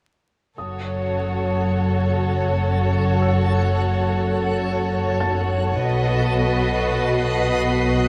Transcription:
0.58 double bass section F#1, cello section F#2, violin section F#4 A4 C#5, synth texture A4 C#5 F#5, grand piano D#6
3.22 grand piano E6
5.20 grand piano A5 A6
5.84 double bass section B1, cello section B2, violin section F#4 B4 D#5 B6, synth texture B4 D#5 F#5
6.48 violin section C7

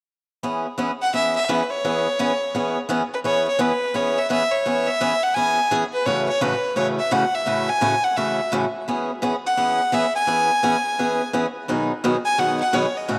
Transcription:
0.43 steel-string acoustic guitar E3 B3 C#4 G#4
0.78 steel-string acoustic guitar E3 B3 C#4 G#4
1.02 fiddle F#5
1.13 steel-string acoustic guitar E3 B3 C#4 G#4, fiddle E5
1.36 fiddle E5
1.49 steel-string acoustic guitar E3 B3 C#4 G#4, fiddle B4
1.62 fiddle B4
1.70 fiddle C#5
1.85 steel-string acoustic guitar E3 B3 C#4 G#4
2.19 steel-string acoustic guitar E3 B3 C#4 G#4
2.55 steel-string acoustic guitar E3 B3 C#4 G#4
2.89 steel-string acoustic guitar E3 B3 C#4 G#4
3.14 fiddle B4
3.24 steel-string acoustic guitar E3 B3 C#4 G#4, fiddle C#5
3.48 fiddle C#5
3.59 steel-string acoustic guitar E3 B3 C#4 G#4, fiddle B4
3.94 steel-string acoustic guitar E3 B3 C#4 G#4, fiddle C#5
4.18 fiddle E5
4.30 steel-string acoustic guitar E3 B3 C#4 G#4, fiddle E5
4.52 fiddle C#5
4.66 steel-string acoustic guitar E3 B3 C#4 G#4
4.87 fiddle E5
5.01 steel-string acoustic guitar E3 B3 C#4 G#4
5.23 fiddle F#5
5.34 steel-string acoustic guitar E3 B3 C#4 G#4, fiddle G#5
5.71 steel-string acoustic guitar E3 B3 C#4 G#4
5.93 fiddle B4
6.06 steel-string acoustic guitar A2 C#3 E3 A3 C#4 F#4, fiddle C#5
6.29 fiddle C#5
6.41 steel-string acoustic guitar A2 C#3 E3 A3 C#4 F#4, fiddle B4
6.76 steel-string acoustic guitar A2 C#3 E3 A3 C#4 F#4, fiddle C#5
6.99 fiddle E5
7.11 steel-string acoustic guitar A2 C#3 E3 A3 C#4 F#4, fiddle F#5
7.35 fiddle E5
7.46 steel-string acoustic guitar A2 C#3 E3 A3 C#4 F#4
7.69 fiddle G#5
7.81 steel-string acoustic guitar A2 C#3 E3 A3 C#4 F#4
8.04 fiddle F#5
8.16 steel-string acoustic guitar A2 C#3 E3 A3 C#4 F#4, fiddle E5
8.52 steel-string acoustic guitar A2 C#3 E3 A3 C#4 F#4
8.88 steel-string acoustic guitar E3 B3 C#4 G#4
9.22 steel-string acoustic guitar E3 B3 C#4 G#4
9.47 fiddle F#5
9.57 steel-string acoustic guitar E3 B3 C#4 G#4
9.92 steel-string acoustic guitar E3 B3 C#4 G#4, fiddle E5
10.16 fiddle G#5
10.27 steel-string acoustic guitar E3 B3 C#4 G#4
10.63 steel-string acoustic guitar E3 B3 C#4 G#4
10.99 steel-string acoustic guitar E3 B3 C#4 G#4
11.33 steel-string acoustic guitar E3 B3 C#4 G#4
11.68 steel-string acoustic guitar B2 D#3 F#3 B3 D#4 G#4
12.04 steel-string acoustic guitar B2 D#3 F#3 B3 D#4 G#4
12.25 fiddle G#5
12.38 steel-string acoustic guitar B2 D#3 F#3 B3 D#4 G#4, fiddle F#5
12.60 fiddle F#5
12.73 steel-string acoustic guitar B2 D#3 F#3 B3 D#4 G#4, fiddle C#5
12.97 fiddle D#5
13.08 steel-string acoustic guitar A2 C#3 E3 A3 C#4 F#4

